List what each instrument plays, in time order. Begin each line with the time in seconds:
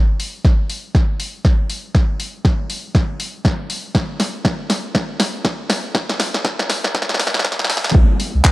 0.20 open hi-hat
0.45 kick, snare
0.70 open hi-hat
0.95 kick, snare
1.20 open hi-hat
1.45 kick, snare
1.70 open hi-hat
1.95 kick, snare
2.20 open hi-hat
2.45 kick, snare
2.70 open hi-hat
2.95 kick, snare
3.20 open hi-hat
3.45 kick, snare
3.70 open hi-hat
3.95 kick, snare
4.20 snare, open hi-hat
4.45 kick, snare
4.70 snare, open hi-hat
4.95 kick, snare
5.20 snare, open hi-hat
5.45 kick, snare
5.70 snare, open hi-hat
5.95 kick, snare
6.09 snare
6.20 snare, open hi-hat
6.34 snare
6.45 kick, snare
6.59 snare
6.70 snare, open hi-hat
6.84 snare
6.95 kick, snare
7.02 snare
7.09 snare
7.14 snare
7.20 snare, open hi-hat
7.27 snare
7.34 snare
7.39 snare
7.45 kick, snare
7.52 snare
7.59 snare
7.65 snare
7.70 snare, open hi-hat
7.77 snare
7.84 snare
7.90 snare
7.95 sub bass C2, kick
8.20 open hi-hat
8.34 sub bass C2
8.44 kick, clap